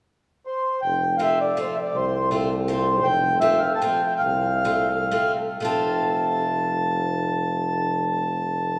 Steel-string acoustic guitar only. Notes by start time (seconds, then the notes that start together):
1.19 A3 C4 F4
1.57 A3 C4 F4
2.31 A3 C4 F4
2.68 A3 C4 F4
3.41 A3 C4 F4
3.82 A3 C4 F4
4.64 A3 C4 F4
5.11 A3 C4 F4
5.60 A3 C4
5.65 F4